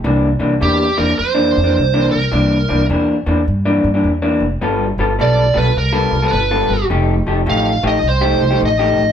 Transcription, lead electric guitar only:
X:1
M:4/4
L:1/16
Q:"Swing" 1/4=105
K:Cmix
V:1 name="Lead electric guitar"
z4 G2 B2 c6 B2- | B4 z12 | z4 d2 =B2 _B3- B/2 B/2 =B4 | z4 f2 _e2 c4 e4 |]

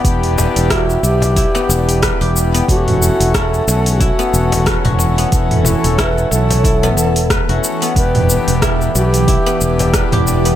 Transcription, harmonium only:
X:1
M:4/4
L:1/16
Q:"Swing 16ths" 1/4=91
K:Edor
V:1 name="Harmonium"
[E,B,DG]6 [E,B,DG]8- [E,B,DG]2 | [E,A,CF]6 [E,A,CF]8- [E,A,CF]2 | [E,A,CF]6 [E,A,CF]4 [E,A,CA] z2 [E,A,CF]3 | [E,B,DG]6 [E,B,DG]8- [E,B,DG]2 |]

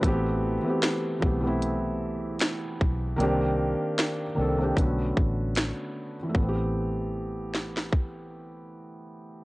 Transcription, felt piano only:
X:1
M:4/4
L:1/16
Q:"Swing 16ths" 1/4=76
K:Ador
V:1 name="Felt piano"
F z12 z3 | z16 | z16 |]
V:2 name="Felt piano"
[E,A,B,CG]3 [E,A,B,CG]3 [E,A,B,CG] [E,A,B,CE]6- [E,A,B,CE] z2 | [_E,_B,CDG]4- [E,B,CDG] z [E,B,CDA] [E,B,CDG] [D,A,=B,^CF]6- [D,A,B,CF] z | [E,A,B,CG]16 |]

